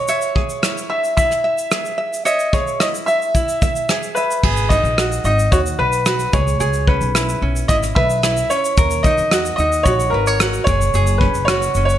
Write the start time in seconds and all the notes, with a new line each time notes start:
Already playing: C#5
0.08 C#5 E5, shaker
0.22 shaker
0.35 G#4, kick
0.50 shaker
0.62 E4, cross-stick, shaker
0.78 shaker
0.90 E5
1.04 shaker
1.17 E4 E5, kick, shaker
1.31 cross-stick, shaker
1.44 E5
1.58 shaker
1.72 G#4, cross-stick, shaker
1.85 shaker
1.98 E5
2.13 shaker
2.25 C#5 D#5 E5, shaker
2.39 shaker
2.53 G#4 C#5, kick, shaker
2.67 shaker
2.80 E4 D#5, cross-stick, shaker
2.95 shaker
3.06 E5, shaker
3.22 shaker
3.35 E4, kick, shaker
3.49 shaker
3.62 E5, kick, shaker
3.76 shaker
3.89 G#4, cross-stick, shaker
4.03 shaker
4.15 B4 E5, shaker
4.31 shaker
4.43 G#1 G#4, kick, crash
4.57 shaker
4.69 D#4 D#5, kick, shaker
4.84 A#1, shaker
4.98 F#4, cross-stick, shaker
5.12 shaker
5.24 G#1 D#4 D#5, shaker
5.39 shaker
5.52 D#2 F#4 C#5, kick, shaker
5.66 shaker
5.79 B1 B4
5.93 shaker
6.06 F#4, cross-stick, shaker
6.19 shaker
6.33 C#2 G#4 C#5, kick, shaker
6.48 shaker
6.60 C#2 G#4, shaker
6.73 shaker
6.87 C#4 B4, kick
7.01 B1, shaker
7.15 E4, cross-stick, shaker
7.29 shaker
7.42 B1 C#4
7.56 shaker
7.68 G#1 E4 D#5, kick, shaker
7.83 cross-stick, shaker
7.95 B1 B4 E5, kick
8.10 shaker
8.23 E4, cross-stick, shaker
8.37 shaker
8.50 C#4 C#5, shaker
8.65 shaker
8.77 D#2 A#4, kick, shaker
8.90 shaker
9.03 D#4 D#5, kick, shaker
9.18 E2, shaker
9.31 F#4, cross-stick, shaker
9.45 shaker
9.56 D#2 D#4 D#5, shaker
9.72 shaker
9.83 A#1 F#4 C#5, kick, shaker
10.00 shaker
10.10 G#1 A#4
10.14 B4
10.27 C#5, shaker
10.40 F#4, cross-stick, shaker
10.53 shaker
10.64 F#1 C#5, kick, shaker
10.68 G#4
10.81 shaker
10.94 F#1 G#4, shaker
11.07 shaker
11.18 C#4 B4, kick
11.34 F#1, shaker
11.45 F#4 C#5, cross-stick, shaker
11.62 shaker
11.75 F#1 C#4, shaker
11.85 C#5
11.89 shaker